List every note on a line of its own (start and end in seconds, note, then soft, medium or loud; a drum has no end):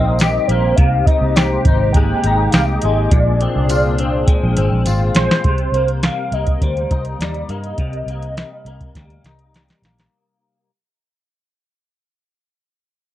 0.00 0.38 A#1 loud
0.00 0.74 C3 medium
0.00 0.77 C3 medium
0.00 0.74 G3 medium
0.00 0.49 A#3 medium
0.00 0.74 A#3 medium
0.00 0.74 C4 medium
0.00 1.07 C4 medium
0.00 0.74 D#4 medium
0.00 0.21 G4 medium
0.00 0.49 D#5 loud
0.19 1.36 G4 medium
0.19 snare loud
0.19 closed hi-hat medium
0.19 tambourine medium
0.47 0.72 A#1 medium
0.47 0.85 A#3 medium
0.47 0.78 C5 medium
0.47 closed hi-hat medium
0.76 1.01 C2 loud
0.76 3.11 C3 medium
0.76 3.10 C3 medium
0.76 3.10 G#3 medium
0.76 5.41 A#3 medium
0.76 3.10 D#4 medium
0.76 1.07 F5 loud
0.76 kick loud
0.76 closed hi-hat medium
0.80 3.10 G4 loud
1.05 1.66 D#4 medium
1.05 1.37 D#5 medium
1.05 kick loud
1.05 closed hi-hat medium
1.21 1.56 C2 loud
1.35 2.53 G4 medium
1.35 1.92 C5 loud
1.35 snare loud
1.35 closed hi-hat medium
1.35 tambourine medium
1.65 2.12 G#1 loud
1.65 2.25 D#4 medium
1.65 kick loud
1.65 closed hi-hat medium
1.93 2.84 G#3 medium
1.93 2.52 G5 loud
1.93 kick medium
1.93 closed hi-hat medium
2.24 2.47 G#1 medium
2.24 3.18 D#4 medium
2.24 closed hi-hat medium
2.51 2.77 C2 loud
2.51 3.18 G4 medium
2.51 2.66 F5 loud
2.51 snare loud
2.51 closed hi-hat medium
2.51 tambourine medium
2.65 3.12 D#5 loud
2.81 3.06 G#1 loud
2.81 3.41 G#3 medium
2.81 closed hi-hat medium
3.10 3.46 A#1 loud
3.10 5.45 A#2 medium
3.10 5.43 D4 medium
3.10 5.43 G#4 medium
3.10 4.86 D5 medium
3.10 kick loud
3.10 closed hi-hat loud
3.41 3.98 C4 medium
3.41 closed hi-hat medium
3.56 4.25 C2 loud
3.69 4.86 F4 medium
3.69 closed hi-hat medium
3.69 tambourine medium
3.98 4.57 C4 medium
3.98 closed hi-hat medium
4.28 5.15 G#3 medium
4.28 kick medium
4.28 closed hi-hat medium
4.43 4.55 A#1 medium
4.57 4.69 G#1 loud
4.57 5.75 C4 medium
4.57 closed hi-hat medium
4.72 4.83 A#1 medium
4.86 5.09 G#1 medium
4.86 5.51 F4 medium
4.86 closed hi-hat medium
4.86 tambourine medium
5.15 5.27 A#1 medium
5.15 5.51 G#3 medium
5.15 5.99 C5 loud
5.15 snare loud
5.15 closed hi-hat medium
5.31 snare loud
5.44 5.68 C2 medium
5.44 7.79 C3 medium
5.44 kick loud
5.44 closed hi-hat medium
5.58 closed hi-hat soft
5.72 6.08 C2 medium
5.72 6.34 A#3 medium
5.72 closed hi-hat medium
5.88 closed hi-hat soft
6.03 6.62 G3 medium
6.03 6.35 F5 loud
6.03 snare medium
6.03 closed hi-hat medium
6.32 6.55 C2 medium
6.32 7.49 A#3 medium
6.32 6.64 D#5 loud
6.32 closed hi-hat medium
6.46 kick medium
6.46 closed hi-hat soft
6.61 6.85 D2 medium
6.61 7.21 G3 medium
6.61 7.20 C5 medium
6.61 kick medium
6.61 closed hi-hat medium
6.77 closed hi-hat soft
6.91 7.14 C2 medium
6.91 9.26 D#4 medium
6.91 kick medium
6.91 closed hi-hat medium
7.05 closed hi-hat soft
7.19 7.43 D#2 medium
7.19 8.38 G3 medium
7.19 7.51 D5 medium
7.19 snare loud
7.19 closed hi-hat medium
7.34 closed hi-hat soft
7.49 7.72 G2 medium
7.49 8.09 A#3 medium
7.49 7.78 D#5 medium
7.49 closed hi-hat medium
7.64 closed hi-hat soft
7.78 8.01 C2 medium
7.78 10.69 C3 medium
7.78 9.50 D#5 medium
7.78 kick loud
7.78 closed hi-hat medium
7.93 closed hi-hat soft
8.06 8.42 C2 medium
8.06 8.66 A#3 medium
8.06 closed hi-hat medium
8.22 closed hi-hat soft
8.37 8.96 G3 medium
8.37 snare medium
8.37 closed hi-hat medium
8.65 8.89 C2 medium
8.65 9.85 A#3 medium
8.65 closed hi-hat medium
8.81 kick medium
8.81 closed hi-hat soft
8.95 9.18 D2 medium
8.95 9.55 G3 medium
8.95 kick medium
8.95 snare soft
8.95 closed hi-hat medium
9.10 closed hi-hat soft
9.24 9.71 C2 medium
9.24 10.69 D#4 medium
9.24 snare medium
9.24 closed hi-hat medium
9.39 closed hi-hat soft
9.54 10.69 G3 medium
9.54 snare medium
9.54 closed hi-hat medium
9.69 snare medium
9.69 closed hi-hat soft
9.82 10.06 A#1 medium
9.82 10.69 A#3 soft
9.82 snare medium
9.82 closed hi-hat medium
9.98 snare medium
9.98 closed hi-hat soft